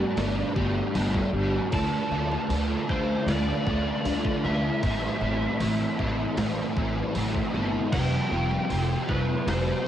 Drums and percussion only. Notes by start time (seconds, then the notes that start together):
0.17 snare, open hi-hat
0.56 kick
0.95 open hi-hat
1.15 kick
1.72 kick, open hi-hat
2.31 snare
2.50 open hi-hat
2.89 kick
3.28 snare, open hi-hat
3.67 kick
4.05 open hi-hat
4.25 kick
4.83 kick, open hi-hat
5.60 open hi-hat
5.99 kick
6.37 snare, open hi-hat
6.77 kick
7.15 open hi-hat
7.35 kick
7.93 kick, crash
8.51 snare
8.70 open hi-hat
9.09 kick
9.48 snare, open hi-hat